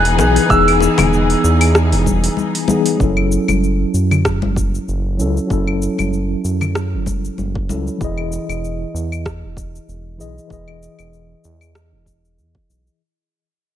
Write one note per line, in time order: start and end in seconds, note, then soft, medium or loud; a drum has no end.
0.00 0.20 E1 medium
0.00 0.14 E3 medium
0.00 2.95 E3 medium
0.00 0.15 B3 medium
0.00 2.95 B3 medium
0.00 0.16 D#4 medium
0.00 2.95 D#4 medium
0.00 0.17 G#4 loud
0.00 2.96 G#4 medium
0.00 0.46 F#6 loud
0.05 open hi-hat soft
0.17 0.39 B1 medium
0.17 0.45 E3 medium
0.17 0.46 B3 medium
0.17 0.47 D#4 medium
0.17 0.47 G#4 loud
0.17 high bongo medium
0.17 cabasa medium
0.36 open hi-hat medium
0.36 cabasa soft
0.46 0.87 E1 loud
0.46 2.63 E3 medium
0.46 2.64 B3 medium
0.50 2.65 D#4 medium
0.50 2.67 G#4 loud
0.50 2.33 E6 medium
0.50 kick loud
0.50 cabasa soft
0.68 open hi-hat soft
0.68 claves medium
0.80 high bongo medium
0.80 cabasa medium
0.98 1.35 E1 medium
0.98 open hi-hat medium
0.98 high bongo medium
0.98 high conga medium
0.98 low conga medium
0.98 cabasa soft
0.98 claves medium
1.13 cabasa soft
1.30 open hi-hat soft
1.44 1.94 E2 medium
1.44 cabasa medium
1.61 open hi-hat medium
1.61 cabasa soft
1.61 claves medium
1.75 cross-stick medium
1.75 cabasa soft
1.92 2.28 E1 medium
1.92 open hi-hat soft
2.06 kick medium
2.06 high conga medium
2.06 cabasa medium
2.24 open hi-hat medium
2.24 cabasa soft
2.37 high conga medium
2.37 cabasa soft
2.55 open hi-hat medium
2.67 2.96 E3 medium
2.67 2.96 B3 medium
2.67 2.97 D#4 medium
2.67 2.97 G#4 medium
2.67 high conga loud
2.67 cabasa medium
2.86 open hi-hat medium
2.86 cabasa soft
2.97 3.38 F#1 loud
2.97 5.14 F#3 medium
2.97 5.15 C#4 medium
2.97 kick loud
2.97 cabasa soft
3.02 5.16 E4 medium
3.02 5.17 A4 loud
3.17 claves medium
3.32 cabasa medium
3.48 3.85 F#1 medium
3.48 high conga medium
3.48 cabasa soft
3.48 claves medium
3.64 cabasa soft
3.94 4.44 F#2 medium
3.94 cabasa medium
4.11 low conga medium
4.11 cabasa soft
4.11 claves medium
4.25 kick loud
4.25 cross-stick medium
4.25 cabasa soft
4.42 4.78 F#1 medium
4.42 high conga medium
4.56 kick medium
4.56 cabasa medium
4.75 cabasa soft
4.88 5.21 F#1 medium
4.88 cabasa soft
5.18 5.39 C#2 medium
5.18 5.45 F#3 medium
5.18 5.47 C#4 medium
5.18 5.47 E4 medium
5.18 5.48 A4 medium
5.18 cabasa medium
5.37 cabasa soft
5.46 7.63 F#3 medium
5.46 7.65 C#4 medium
5.50 5.88 F#1 loud
5.50 7.66 E4 medium
5.50 7.67 A4 loud
5.50 kick loud
5.50 cabasa soft
5.67 claves medium
5.82 cabasa medium
5.98 6.35 F#1 medium
5.98 high conga medium
5.98 cabasa soft
5.98 claves medium
6.13 cabasa soft
6.44 6.95 F#2 medium
6.44 cabasa medium
6.61 low conga medium
6.61 cabasa soft
6.61 claves medium
6.75 cross-stick medium
6.75 cabasa soft
6.94 7.29 F#1 medium
7.06 kick medium
7.06 high conga medium
7.06 cabasa medium
7.25 cabasa soft
7.38 7.71 F#1 medium
7.38 high conga medium
7.38 cabasa soft
7.55 kick loud
7.68 7.89 C#2 medium
7.68 7.96 F#3 medium
7.68 7.97 C#4 medium
7.68 7.97 E4 medium
7.68 7.98 A4 medium
7.68 high conga medium
7.68 cabasa medium
7.87 cabasa soft
7.98 8.38 E1 loud
7.98 10.14 E3 medium
7.98 10.15 E4 medium
7.98 kick loud
7.98 cabasa soft
8.03 10.17 G#4 medium
8.03 10.17 D#5 loud
8.18 claves soft
8.32 cabasa medium
8.49 8.85 E1 medium
8.49 cabasa soft
8.49 claves medium
8.64 cabasa soft
8.94 9.44 E2 medium
8.94 cabasa medium
9.12 cabasa soft
9.12 claves medium
9.26 kick loud
9.26 cross-stick medium
9.26 cabasa soft
9.43 9.79 E1 medium
9.57 kick medium
9.57 cabasa medium
9.75 cabasa soft
9.88 10.21 E1 medium
9.88 cabasa soft
10.18 10.39 B1 medium
10.18 10.46 E3 medium
10.18 10.46 E4 medium
10.18 10.47 G#4 medium
10.18 10.48 D#5 medium
10.18 cabasa medium
10.38 cabasa soft
10.47 10.88 E1 loud
10.47 12.64 E3 medium
10.47 12.65 E4 medium
10.47 kick loud
10.52 12.66 G#4 medium
10.52 12.67 D#5 medium
10.52 cabasa soft
10.68 claves soft
10.83 cabasa medium
10.99 11.35 E1 medium
10.99 cabasa soft
10.99 claves medium
11.13 cabasa soft
11.44 11.94 E2 medium
11.44 cabasa medium
11.61 cabasa soft
11.61 claves medium
11.75 cross-stick medium
11.75 cabasa soft
11.92 12.39 E1 medium
12.06 kick medium
12.06 cabasa medium
12.25 cabasa soft
12.38 12.58 E2 medium
12.38 cabasa soft
12.55 kick loud
12.69 12.89 B1 medium
12.69 cabasa medium
12.87 cabasa soft